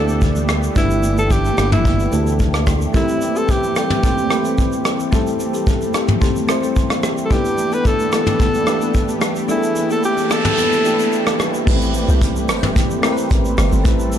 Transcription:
Already playing: D2 E3 A3 B3 D4 E4 G4 A4 B4 D5
0.09 shaker
0.21 kick, shaker
0.35 high conga, shaker
0.49 cross-stick, low conga, shaker
0.63 shaker
0.75 G1 A3 D4 E4 G4 B4, kick, low conga, shaker
0.90 shaker
1.03 high conga, shaker
1.18 A4, shaker
1.31 G4, kick, shaker
1.45 high conga, shaker
1.58 G1, cross-stick, high conga, shaker
1.72 E4, mid tom, high conga, shaker
1.85 kick, low conga, shaker
1.99 high conga, shaker
2.11 D2 A3 D4 E4 G4 A4, shaker
2.27 shaker
2.40 kick, shaker
2.54 cross-stick, high conga, shaker
2.67 kick, cross-stick, high conga, low conga, shaker
2.81 shaker
2.93 G3 A3 C4 E4 G4 A4 A#4, kick, low conga, shaker
3.03 B4
3.09 shaker
3.21 high conga, shaker
3.35 C4 G4 A4, shaker
3.49 G4, kick, shaker
3.63 high conga, shaker
3.76 C4 G4 A4, cross-stick, high conga, shaker
3.90 mid tom, high conga, shaker
4.03 C4 G4 A4, kick, low conga, shaker
4.17 high conga, shaker
4.29 A3 C4 E4 G4 B4, cross-stick, shaker
4.45 C4 G4 A4, shaker
4.58 kick, shaker
4.72 high conga, shaker
4.85 cross-stick, low conga, shaker
5.00 shaker
5.11 A3 C4 E4 G4 A4, kick, low conga, shaker
5.27 shaker
5.40 high conga, shaker
5.54 C4 G4 A4, shaker
5.67 kick, shaker
5.81 high conga, shaker
5.94 C4 G4 A4, cross-stick, high conga, shaker
6.08 mid tom, high conga, shaker
6.21 C4 G4 A4, kick, low conga, shaker
6.36 high conga, shaker
6.47 A3 C4 E4 G4 C5, cross-stick, shaker
6.63 C4 G4 A4, shaker
6.76 kick, shaker
6.90 cross-stick, high conga, shaker
7.03 cross-stick, low conga, shaker
7.18 shaker
7.25 A4
7.29 E3 A3 B3 D4 E4 G4 A4 B4, kick, low conga, shaker
7.45 shaker
7.58 high conga, shaker
7.72 B3 E4 A4 B4, shaker
7.85 A4, kick, shaker
7.99 high conga, shaker
8.12 B3 E4 A4, cross-stick, high conga, shaker
8.27 mid tom, high conga, shaker
8.39 B3 E4 A4, kick, low conga, shaker
8.54 high conga, shaker
8.66 A3 D4 E4 G4 B4, cross-stick, shaker
8.81 B3 E4 A4, shaker
8.94 kick, shaker
9.08 high conga, shaker
9.21 cross-stick, low conga, shaker
9.36 shaker
9.47 A3 B3 D4 E4 G4 G#4 A4, noise sweep, low conga, shaker
9.58 A4
9.63 shaker
9.76 high conga, shaker
9.90 B3 E4 A4, shaker
10.03 G4, shaker
10.17 high conga, shaker
10.30 B3 E4 A4, cross-stick, high conga, shaker
10.45 mid tom, high conga, shaker
10.58 B3 E4 A4, low conga, shaker
10.72 high conga, shaker
10.84 A3 D4 E4 G4 A4, shaker
10.94 B4
10.99 B3 E4 A4, shaker
11.12 shaker
11.27 cross-stick, high conga, shaker
11.40 cross-stick, high conga, low conga, shaker
11.54 shaker
11.66 A1 E3 G3 A3 B3 C4 E4 G4 B4, kick, crash, low conga
11.73 C4
11.81 shaker
11.94 open hi-hat, high conga, shaker
12.08 C2, shaker
12.21 kick, hi-hat pedal, shaker
12.36 high conga, shaker
12.49 G1, cross-stick, open hi-hat, high conga, shaker
12.63 mid tom, high conga, shaker
12.76 kick, hi-hat pedal, low conga, shaker
12.90 high conga, shaker
13.02 A3 C4 E4 G4 A#4, cross-stick, open hi-hat, shaker
13.12 B4
13.18 shaker
13.31 A1, kick, hi-hat pedal, shaker
13.45 high conga, shaker
13.58 G1, cross-stick, open hi-hat, high conga, low conga, shaker
13.72 G1, shaker
13.84 A1 A3 C4 E4 G4 A4 B4, kick, hi-hat pedal, low conga, shaker
13.99 shaker
14.12 open hi-hat, high conga, shaker

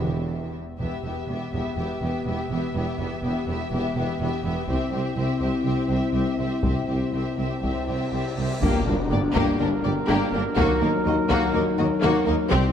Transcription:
Already playing: E1 E2 B3 G4 E5
0.04 taiko mid
0.79 E1 E2 B3 G4 E5, taiko
1.03 E1 E2 B3 G4 E5
1.28 E1 E2 B3 G4 E5
1.52 E1 E2 B3 G4 E5, taiko
1.76 E1 E2 B3 G4 E5
2.01 E1 E2 B3 G4 E5
2.25 E1 E2 B3 G4 E5
2.49 E1 E2 B3 G4 E5
2.74 E1 E2 B3 G4 E5
2.98 E1 E2 B3 G4 E5
3.22 E1 E2 B3 G4 E5
3.47 E1 E2 B3 G4 E5
3.71 E1 E2 B3 G4 E5
3.96 E1 E2 B3 G4 E5
4.19 E1 E2 B3 G4 E5
4.44 E1 E2 B3 G4 E5
4.68 C2 C4 E4 G4 E5, taiko
4.92 C2 C4 G4 E5
5.16 C2 C4 G4 E5
5.40 C2 C4 G4 E5
5.64 C2 C4 G4 E5
5.88 C2 C4 G4 E5
6.13 C2 C4 G4 E5
6.38 C2 C4 G4 E5
6.63 C2 C4 G4 E5, taiko, cymbal swell
6.88 C2 C4 G4 E5
7.12 C2 C4 G4 E5
7.38 C2 C4 G4 E5
7.62 C2 C4 G4 E5, taiko
7.86 C2 C4 G4 E5
8.11 C2 C4 G4 E5
8.36 C2 C4 G4 E5
8.61 G1 G2 G3 A#3 D4 G4 A#4, taiko, tam-tam, impact
8.86 G1 G2 A#3 D4 A#4
9.11 G1 G2 A#3 G4 D5
9.35 G1 G2 A#3 G4, taiko
9.59 G1 G2 A#3 D4 A#4
9.84 G1 G2 A#3 G4 D5
10.08 G1 G2 A#3 G4
10.33 G1 G2 A#3 D4 A#4
10.57 D#2 F#3 A#3 D#4 F#4, taiko
10.81 D#2 A#3 D#4 A#4
11.05 D#2 A#3 F#4 D#5
11.29 D#2 A#3 F#4, taiko
11.54 D#2 A#3 D#4 A#4
11.77 D#2 A#3 F#4 D#5
12.02 D#2 A#3 F#4
12.26 D#2 A#3 D#4 A#4
12.50 C2 G3 C4 E4 G4 C5, taiko

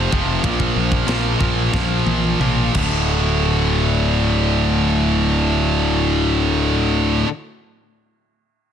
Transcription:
Already playing: F2 C3 F3
0.12 F1 F2 C3 F3, kick
0.44 A#1 A#2 F3 A#3, kick, ride bell
0.60 kick
0.76 A#1
0.92 kick
1.07 A#1 A#2 F3 A#3, snare, ride bell
1.39 A#1 A#2 F3 A#3, kick
1.72 A#1 A#2 F3 A#3, kick, snare
2.06 A#1, high tom
2.24 high tom
2.40 A#1 A#2 F3 A#3, mid tom
2.74 D1 D2 A2 D3, kick, crash

